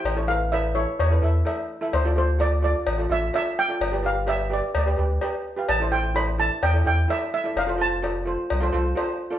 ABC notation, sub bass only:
X:1
M:4/4
L:1/8
Q:1/4=128
K:Am
V:1 name="Sub bass" clef=bass
A,,,4 E,, E,, z2 | D,,4 A,,, A,,, z2 | G,,,4 D,, D,, z2 | A,,,4 E,, E,, z2 |
F,,,4 C,, C,, z2 |]